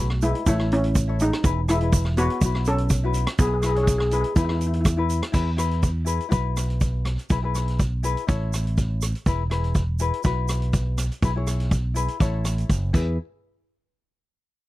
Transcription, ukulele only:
0.22 0.45 E4 medium
0.22 0.46 G#4 medium
0.22 0.47 B4 medium
0.46 0.95 E4 medium
0.46 0.96 A4 medium
0.46 0.96 C#5 loud
1.07 1.30 E4 medium
1.07 1.30 A4 medium
1.07 1.31 C#5 medium
1.43 1.59 E4 medium
1.43 1.59 G#4 medium
1.43 1.60 B4 medium
1.68 1.76 E4 medium
1.68 1.76 G#4 medium
1.68 1.77 B4 medium
1.81 2.03 E4 medium
1.81 2.03 G#4 medium
1.81 2.04 B4 medium
2.17 2.41 E4 medium
2.17 2.42 G#4 medium
2.17 2.42 B4 medium
2.44 2.92 E4 medium
2.44 2.92 F#4 medium
2.44 2.92 B4 medium
3.03 3.25 E4 medium
3.03 3.26 F#4 medium
3.03 3.26 B4 medium
3.39 3.55 E4 medium
3.39 3.55 G#4 medium
3.39 3.55 B4 medium
3.63 3.71 E4 medium
3.63 3.72 G#4 medium
3.63 3.72 B4 medium
3.76 3.98 E4 medium
3.76 3.98 G#4 medium
3.76 3.99 C#5 medium
4.11 4.34 E4 medium
4.11 4.35 G#4 medium
4.11 4.36 B4 medium
4.35 4.85 E4 medium
4.35 4.85 G#4 medium
4.35 4.86 B4 medium
4.97 5.20 E4 medium
4.97 5.20 G#4 medium
4.97 5.20 B4 medium
5.32 5.49 E4 medium
5.32 5.49 G#4 medium
5.32 5.50 B4 medium
5.57 5.88 E4 medium
5.57 5.88 G#4 medium
5.57 5.88 B4 loud
6.05 6.28 E4 medium
6.05 6.28 G#4 medium
6.05 6.29 B4 medium
6.29 7.09 E4 medium
6.29 7.10 F#4 medium
6.29 7.10 B4 loud
7.30 7.38 E4 medium
7.30 7.38 G#4 medium
7.30 7.39 B4 loud
7.42 7.79 E4 medium
7.42 7.79 G#4 medium
7.42 7.80 B4 medium
8.03 8.26 E4 medium
8.03 8.27 G#4 medium
8.03 8.28 B4 medium
8.27 9.07 E4 medium
8.27 9.07 A4 medium
8.27 9.07 C#5 loud
9.26 9.42 E4 loud
9.26 9.42 G#4 medium
9.26 9.42 B4 loud
9.50 9.80 E4 medium
9.50 9.81 G#4 medium
9.50 9.81 B4 medium
9.99 10.22 E4 medium
9.99 10.23 G#4 medium
9.99 10.24 B4 loud
10.24 11.03 E4 medium
10.24 11.03 F#4 medium
10.24 11.04 B4 loud
11.22 11.30 E4 medium
11.22 11.31 G#4 medium
11.22 11.31 B4 loud
11.36 11.72 E4 medium
11.36 11.72 G#4 medium
11.36 11.72 C#5 medium
11.94 12.19 E4 medium
11.94 12.19 G#4 medium
11.94 12.21 B4 loud
12.20 12.92 E4 loud
12.20 12.94 A4 medium
12.20 12.93 C#5 loud
12.93 13.17 E4 medium
12.93 13.17 G#4 medium
12.93 13.17 B4 medium

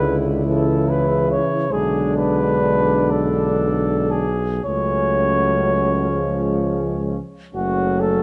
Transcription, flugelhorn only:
0.00 0.18 B4 medium
0.46 0.91 A4 soft
0.89 1.30 B4 medium
1.31 1.74 C#5 medium
1.72 2.16 G#4 medium
2.17 3.12 B4 medium
3.11 4.12 A4 medium
4.11 4.64 G#4 medium
4.64 7.05 C#5 medium
7.56 8.02 F#4 medium
8.00 8.23 A4 medium

